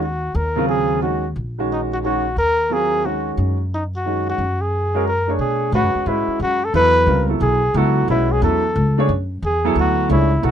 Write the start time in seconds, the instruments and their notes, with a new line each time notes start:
Already playing: upright bass D#2
0.02 muted trumpet F#4
0.35 upright bass D#2, muted trumpet A#4
0.56 grand piano C#3 F#3 C4 F4
0.68 muted trumpet G#4
1.02 grand piano D#3 G#3 C#4 F#4, muted trumpet F#4
1.36 upright bass A#1
1.58 grand piano D#3 G#3 C#4 F#4
1.72 muted trumpet D#4
1.93 muted trumpet F#4
2.04 grand piano D#3 G#3 C#4 F#4, muted trumpet F#4
2.36 upright bass D#2, muted trumpet A#4
2.70 grand piano F#3 C4 F4 A#4, muted trumpet G#4
3.05 grand piano D#3 G#3 C#4 F#4, muted trumpet F#4
3.37 upright bass F#2
3.74 muted trumpet D#4
3.96 muted trumpet F#4
4.06 grand piano D#3 G#3 C#4 F#4
4.29 muted trumpet F#4
4.38 upright bass F#2
4.61 muted trumpet G#4
4.94 grand piano G#3 C#4 F#4 A#4
5.08 muted trumpet A#4
5.27 grand piano A3 D4 G#4 C#5
5.39 upright bass B2, muted trumpet G#4
5.72 upright bass A2, grand piano G#3 C#4 F#4 B4, muted trumpet F#4
5.83 upright bass F#2
5.95 upright bass E2
6.06 upright bass G#2, grand piano G#3 C#4 F#4 B4, muted trumpet E4
6.28 muted upright bass stroke
6.40 upright bass F#2, muted trumpet F#4
6.64 muted trumpet A4
6.73 upright bass E2, grand piano F#3 B3 E4 A4, muted trumpet B4
7.07 upright bass C#2, grand piano G3 C4 F4 A#4
7.28 grand piano F#3 B3 E4 A4
7.41 upright bass B1, muted trumpet G#4
7.74 upright bass C#2, grand piano F#3 B3 E4 A4, muted trumpet F#4
8.08 upright bass B1, grand piano G#3 C#4 F#4 B4, muted trumpet E4
8.32 muted trumpet G#4
8.42 upright bass E2, grand piano F#3 B3 E4 A4, muted trumpet A4
8.76 upright bass C#2
8.98 grand piano A3 D4 G#4 C#5
9.09 upright bass F#2
9.42 upright bass E2, muted trumpet G#4
9.65 grand piano F#3 B3 E4 A4
9.75 upright bass D2
9.79 muted trumpet F#4
10.09 upright bass C#2, grand piano A3 D4 G#4 C#5, muted trumpet E4
10.42 upright bass B1, grand piano F#3 B3 E4 A4, muted trumpet F#4